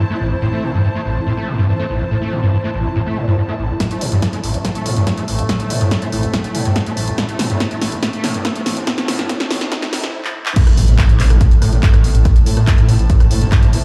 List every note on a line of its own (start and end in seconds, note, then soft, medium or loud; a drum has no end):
0.00 10.14 E4 medium
0.00 10.14 C5 medium
0.00 10.14 A5 medium
0.11 0.16 A3 loud
0.21 0.33 A1 medium
0.32 0.35 A2 medium
0.42 0.48 A2 loud
0.53 0.65 A3 medium
0.63 0.72 A2 medium
0.74 0.83 G2 loud
0.84 0.88 G2 medium
0.95 1.01 A3 loud
1.06 1.18 A1 medium
1.16 1.20 A2 medium
1.27 1.33 A2 loud
1.37 1.49 A3 medium
1.48 1.57 A2 medium
1.58 1.67 G2 loud
1.69 1.72 G2 medium
1.79 1.85 A3 loud
1.90 2.02 A1 medium
2.01 2.04 A2 medium
2.11 2.17 A2 loud
2.22 2.34 A3 medium
2.32 2.41 A2 medium
2.43 2.52 G2 loud
2.53 2.57 G2 medium
2.64 2.70 A3 loud
2.75 2.87 A1 medium
2.85 2.89 A2 medium
2.96 3.02 A2 loud
3.06 3.18 A3 medium
3.17 3.26 A2 medium
3.28 3.36 G2 loud
3.38 3.41 G2 medium
3.49 3.54 A3 loud
3.59 3.71 A1 medium
3.70 3.73 A2 medium
3.80 10.14 A2 medium
3.80 3.86 A2 loud
3.80 10.14 A3 medium
3.80 kick loud
3.80 snare soft
3.80 closed hi-hat medium
3.80 riser medium
3.91 4.03 A3 medium
3.91 closed hi-hat medium
4.01 4.10 A1 medium
4.01 4.10 A2 medium
4.01 open hi-hat loud
4.12 4.21 A1 medium
4.12 4.21 G2 loud
4.12 closed hi-hat medium
4.22 4.26 G2 medium
4.22 kick loud
4.22 snare medium
4.22 closed hi-hat loud
4.33 4.39 A3 loud
4.33 closed hi-hat medium
4.44 4.56 A1 medium
4.44 4.52 A1 medium
4.44 open hi-hat medium
4.54 4.63 A1 medium
4.54 4.58 A2 medium
4.54 closed hi-hat medium
4.65 4.70 A2 loud
4.65 kick loud
4.65 snare medium
4.65 closed hi-hat loud
4.75 4.87 A3 medium
4.75 closed hi-hat medium
4.86 4.95 A2 medium
4.86 4.95 A2 loud
4.86 open hi-hat loud
4.96 5.05 A1 medium
4.96 5.05 G2 loud
4.96 closed hi-hat soft
5.07 kick loud
5.07 snare medium
5.07 closed hi-hat medium
5.18 5.26 A1 medium
5.18 5.23 A3 loud
5.18 closed hi-hat medium
5.28 5.40 A1 medium
5.28 open hi-hat loud
5.39 5.47 A1 medium
5.39 5.42 A2 medium
5.39 closed hi-hat medium
5.49 5.55 A2 loud
5.49 kick loud
5.49 snare medium
5.49 closed hi-hat medium
5.60 5.72 A3 medium
5.60 closed hi-hat medium
5.70 5.79 A2 medium
5.70 open hi-hat loud
5.81 5.90 G2 loud
5.81 5.90 A2 medium
5.81 closed hi-hat medium
5.91 5.95 G2 medium
5.91 kick loud
5.91 snare medium
5.91 closed hi-hat loud
6.02 6.08 A3 loud
6.02 closed hi-hat medium
6.12 6.25 A1 medium
6.12 6.21 A2 medium
6.12 open hi-hat medium
6.23 6.32 A1 medium
6.23 6.27 A2 medium
6.23 closed hi-hat medium
6.34 6.40 A2 loud
6.34 kick loud
6.34 snare medium
6.34 closed hi-hat loud
6.44 6.56 A3 medium
6.44 closed hi-hat medium
6.55 6.64 A2 medium
6.55 open hi-hat loud
6.65 6.74 G1 medium
6.65 6.74 G2 loud
6.65 closed hi-hat medium
6.76 6.79 G2 medium
6.76 kick loud
6.76 snare medium
6.76 closed hi-hat medium
6.86 6.95 G1 medium
6.86 6.92 A3 loud
6.86 closed hi-hat medium
6.97 7.09 A1 medium
6.97 open hi-hat loud
7.08 7.16 G1 medium
7.08 7.11 A2 medium
7.08 closed hi-hat medium
7.18 7.24 A2 loud
7.18 kick loud
7.18 snare medium
7.18 closed hi-hat loud
7.29 7.41 A3 medium
7.29 closed hi-hat medium
7.39 7.48 A1 medium
7.39 7.48 A2 medium
7.39 snare medium
7.39 open hi-hat loud
7.50 7.59 A1 medium
7.50 7.59 G2 loud
7.50 closed hi-hat medium
7.60 7.64 G2 medium
7.60 kick loud
7.60 snare medium
7.60 closed hi-hat medium
7.71 7.77 A3 loud
7.71 closed hi-hat medium
7.81 7.90 A1 medium
7.81 7.94 A1 medium
7.81 snare medium
7.81 open hi-hat loud
7.92 8.01 A1 medium
7.92 7.96 A2 medium
7.92 closed hi-hat medium
8.03 8.09 A2 loud
8.03 kick loud
8.03 snare medium
8.03 closed hi-hat loud
8.13 8.25 A3 medium
8.13 closed hi-hat medium
8.24 8.33 A2 loud
8.24 8.33 A2 medium
8.24 snare medium
8.24 open hi-hat loud
8.34 8.43 A1 medium
8.34 8.43 G2 loud
8.34 closed hi-hat medium
8.45 8.48 G2 medium
8.45 kick loud
8.45 snare medium
8.45 closed hi-hat loud
8.56 8.64 A1 medium
8.56 8.61 A3 loud
8.56 closed hi-hat medium
8.66 8.78 A1 medium
8.66 snare medium
8.66 open hi-hat loud
8.77 8.85 A1 medium
8.77 8.80 A2 medium
8.77 closed hi-hat medium
8.87 8.93 A2 loud
8.87 kick loud
8.87 snare medium
8.87 closed hi-hat medium
8.98 9.10 A3 medium
8.98 snare medium
8.98 closed hi-hat medium
9.08 9.17 A2 loud
9.08 9.17 A2 medium
9.08 snare loud
9.08 open hi-hat loud
9.19 9.28 G2 loud
9.19 9.28 A2 medium
9.19 snare medium
9.19 closed hi-hat medium
9.29 9.33 G2 medium
9.29 kick loud
9.29 snare loud
9.29 closed hi-hat loud
9.40 9.46 A3 loud
9.40 snare medium
9.40 closed hi-hat medium
9.51 9.63 A1 medium
9.51 9.59 A2 loud
9.51 snare loud
9.51 open hi-hat loud
9.61 9.70 A1 medium
9.61 9.65 A2 medium
9.61 snare medium
9.61 closed hi-hat medium
9.72 9.78 A2 loud
9.72 kick loud
9.72 snare loud
9.72 closed hi-hat loud
9.82 9.88 A3 medium
9.82 snare medium
9.82 closed hi-hat medium
9.93 10.02 A1 medium
9.93 9.99 A2 loud
9.93 snare loud
9.93 open hi-hat loud
10.04 10.12 G1 medium
10.04 10.09 A2 medium
10.04 snare medium
10.04 closed hi-hat soft
10.25 clap medium
10.46 clap loud
10.56 13.84 A2 medium
10.56 10.62 A2 loud
10.56 13.84 A3 medium
10.56 13.84 E4 medium
10.56 kick loud
10.56 closed hi-hat medium
10.56 crash loud
10.56 impact medium
10.67 10.70 A1 loud
10.67 cross-stick medium
10.67 closed hi-hat medium
10.77 10.86 A1 loud
10.77 10.81 A2 medium
10.77 13.84 A5 medium
10.77 open hi-hat loud
10.88 10.97 A1 medium
10.88 10.94 A#2 medium
10.88 closed hi-hat medium
10.99 11.11 G2 loud
10.99 kick loud
10.99 cross-stick medium
10.99 clap loud
10.99 closed hi-hat medium
11.09 11.21 A2 loud
11.09 13.84 C5 medium
11.09 closed hi-hat medium
11.20 11.28 A1 loud
11.20 11.25 C3 loud
11.20 clap medium
11.20 open hi-hat medium
11.30 11.39 A1 medium
11.30 cross-stick medium
11.30 closed hi-hat medium
11.41 11.47 A2 loud
11.41 kick loud
11.41 closed hi-hat medium
11.51 11.55 A1 loud
11.51 closed hi-hat medium
11.62 11.65 A2 medium
11.62 11.71 A2 medium
11.62 cross-stick medium
11.62 open hi-hat loud
11.73 11.81 A1 medium
11.73 11.78 A#2 medium
11.73 closed hi-hat medium
11.83 11.95 G2 loud
11.83 kick loud
11.83 clap loud
11.83 closed hi-hat medium
11.94 12.02 A1 medium
11.94 12.06 A2 loud
11.94 cross-stick medium
11.94 closed hi-hat medium
12.04 12.10 C3 loud
12.04 open hi-hat medium
12.15 12.23 A1 medium
12.15 closed hi-hat medium
12.25 12.31 A2 loud
12.25 kick loud
12.25 cross-stick medium
12.25 closed hi-hat medium
12.36 12.39 A1 loud
12.36 closed hi-hat medium
12.46 12.50 A2 medium
12.46 12.55 A2 loud
12.46 open hi-hat loud
12.57 12.66 A2 medium
12.57 12.63 A#2 medium
12.57 cross-stick medium
12.57 closed hi-hat medium
12.67 12.80 G2 loud
12.67 kick loud
12.67 clap loud
12.67 closed hi-hat medium
12.78 12.90 A2 loud
12.78 closed hi-hat medium
12.89 12.97 A2 medium
12.89 12.95 C3 loud
12.89 open hi-hat loud
12.99 13.08 A1 medium
12.99 closed hi-hat medium
13.10 13.16 A2 loud
13.10 kick loud
13.10 closed hi-hat medium
13.20 13.24 A1 loud
13.20 cross-stick medium
13.20 closed hi-hat medium
13.31 13.40 A2 loud
13.31 13.34 A2 medium
13.31 open hi-hat loud
13.41 13.50 G1 medium
13.41 13.47 A#2 medium
13.41 closed hi-hat medium
13.52 13.64 G2 loud
13.52 kick loud
13.52 cross-stick medium
13.52 clap loud
13.52 closed hi-hat medium
13.63 13.71 G1 medium
13.63 13.75 A2 loud
13.63 closed hi-hat medium
13.73 13.79 C3 loud
13.73 open hi-hat loud